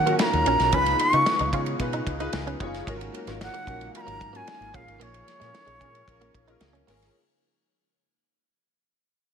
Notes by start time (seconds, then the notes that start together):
Already playing: C#3 D#3 F#3 A#3 C#4 D#4 F4 F#4 A#4 C#5 F#5
0.06 A#3 C#4 F4 F#4 A#4, ride
0.19 B5, snare, ride
0.24 A#5
0.33 D#2, ride
0.45 A#1 C#4 F4 F#4 A#4, ride
0.59 B1, snare, ride
0.72 C#2 G#3 B3 C#4 D#4 F4 G#4 B4 B5, kick, ride
0.86 ride
0.99 C#6, muted clean electric guitar stroke, ride
1.12 C#3 D#4 F4 G#4 B4, ride
1.26 muted clean electric guitar stroke, snare, ride
1.39 C#2 D#4, ride
1.53 C#3 D#4 F4 G#4 C#5, kick, ride
1.66 ride
1.80 B2 D#4 F4 G#4 B4, kick, ride
1.93 D#4, ride
2.07 C#2, muted clean electric guitar stroke, kick, ride
2.19 D#4 F4 G#4 B4, ride
2.33 C#2, muted clean electric guitar stroke, snare, ride
2.47 C#4, ride
2.60 F#1 B3 D#4 F4 G#4 C#5, kick, ride
2.74 snare, ride
2.87 G#1 F#3 G#3 A#3 C#4 D#4 F4 F#4 A#4, kick, ride
3.01 ride
3.14 muted clean electric guitar stroke, ride
3.27 G#1 A#3 C#4 F4 F#4 A#4, snare, ride
3.41 F#5, muted clean electric guitar stroke, snare, ride
3.54 A#3, ride
3.67 A#1 C#4 F4 F#4 A#4, kick, ride
3.81 ride
3.95 C#4 F4 F#4 A#4 B5, ride
4.01 A#5
4.07 G#1 A#3, ride
4.20 G#2, muted clean electric guitar stroke, kick, ride
4.33 A#3 C#4 F4 F#4 A#4 G#5, ride
4.47 snare, ride
4.60 G#1, ride
4.74 A#1 F3 C#4 F4 G#4 A#4 F5, kick, ride
4.87 G#1, ride
5.00 A#1 A#3 C#5, ride
5.14 ride
5.27 muted clean electric guitar stroke, snare, ride
5.40 A#2 G#3 C#4 F4 G#4 A#4, snare, ride
5.54 muted clean electric guitar stroke, snare, ride
5.66 A#1 G#3, ride
5.81 A#2 C#4 F4 G#4 A#4, kick, ride
5.95 ride
6.07 A#1 C#4 F4 G#4 A#4, kick, ride
6.21 A#3, ride
6.34 A#1, muted clean electric guitar stroke, kick, ride
6.48 C#4 D#4 F4 G#4 A#4, ride
6.61 C#2, muted clean electric guitar stroke, snare, ride
6.73 C#4, ride
6.87 G#1 A#3 C#4 F4 G#4 A#4, snare, open hi-hat, ride
7.02 snare, ride